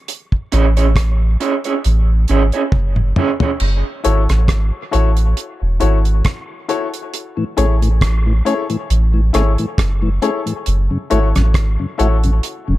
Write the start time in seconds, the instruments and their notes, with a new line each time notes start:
0.08 closed hi-hat
0.32 kick
0.52 sub bass A1, clean electric guitar C#4 E4 G#4 C#5, closed hi-hat
0.77 clean electric guitar C#4 E4 G#4 C#5, closed hi-hat
0.96 kick, cross-stick, closed hi-hat
1.40 clean electric guitar C#4 E4 G#4 C#5, closed hi-hat
1.64 clean electric guitar C#4 E4 G#4 C#5, closed hi-hat
1.84 sub bass A1, closed hi-hat
2.28 sub bass G#1, clean electric guitar C#4 E4 G#4 C#5, closed hi-hat
2.52 clean electric guitar C#4 E4 G#4 C#5, closed hi-hat
2.72 sub bass F#1, kick, high tom
2.96 mid tom
3.16 clean electric guitar C#4 E4 G#4 C#5, mid tom
3.40 clean electric guitar C#4 E4 G#4 C#5, floor tom
3.60 sub bass F#1, splash
4.04 sub bass G#1, grand piano E4 F#4 A4 C#5, closed hi-hat
4.29 sub bass A1, cross-stick, closed hi-hat
4.48 sub bass G#1, kick, cross-stick, closed hi-hat
4.91 sub bass A1, grand piano E4 F#4 A4 C#5, closed hi-hat
5.17 closed hi-hat
5.37 closed hi-hat
5.62 sub bass E1
5.80 sub bass G#1, grand piano E4 F#4 A4 C#5, closed hi-hat
6.05 closed hi-hat
6.25 kick, cross-stick, closed hi-hat
6.68 grand piano E4 F#4 A4 C#5, closed hi-hat
6.94 closed hi-hat
7.14 closed hi-hat
7.37 tonewheel organ A2 E3
7.57 sub bass A1, tonewheel organ A3 C#4 G#4, grand piano E4 G#4 A4 C#5, closed hi-hat
7.82 tonewheel organ A2 E3, closed hi-hat
8.01 kick, cross-stick, closed hi-hat
8.26 tonewheel organ A2 E3
8.45 tonewheel organ A3 C#4 G#4, grand piano E4 G#4 A4 C#5, closed hi-hat
8.70 tonewheel organ A2 E3, closed hi-hat
8.90 sub bass A1, closed hi-hat
9.14 tonewheel organ A2 E3
9.33 sub bass G#1, tonewheel organ A3 C#4 G#4, grand piano E4 G#4 A4 C#5, cross-stick, closed hi-hat
9.58 tonewheel organ A2 E3, closed hi-hat
9.78 sub bass F#1, kick, cross-stick, closed hi-hat
10.02 tonewheel organ A2 E3
10.22 tonewheel organ A3 C#4 G#4, grand piano E4 G#4 A4 C#5, closed hi-hat
10.46 tonewheel organ A2 E3, closed hi-hat
10.66 sub bass F#1, closed hi-hat
10.91 tonewheel organ F#2 C#3
11.10 sub bass G#1, tonewheel organ A3 E4 F#4, grand piano E4 F#4 A4 C#5, closed hi-hat
11.35 sub bass A1, tonewheel organ F#2 C#3, cross-stick, closed hi-hat
11.54 sub bass G#1, kick, cross-stick, closed hi-hat
11.79 tonewheel organ F#2 C#3
11.98 sub bass A1, tonewheel organ A3 E4 F#4, grand piano E4 F#4 A4 C#5, closed hi-hat
12.24 tonewheel organ F#2 C#3, closed hi-hat
12.43 closed hi-hat
12.68 sub bass E1, tonewheel organ F#2 C#3